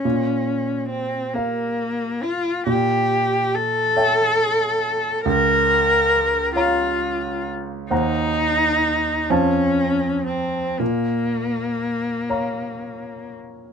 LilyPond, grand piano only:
\new Staff \with { instrumentName = "Grand piano" } { \time 6/8 \key bes \minor \tempo 4. = 45 bes,4. <bes' f''>4. | bes,4. <des'' fes'' g''>4. | des,4. <des'' f'' bes''>4. | <ees, c'' ges'' bes''>4. <f, c'' f'' a''>4. |
bes,4. <des'' f'' bes''>4. | }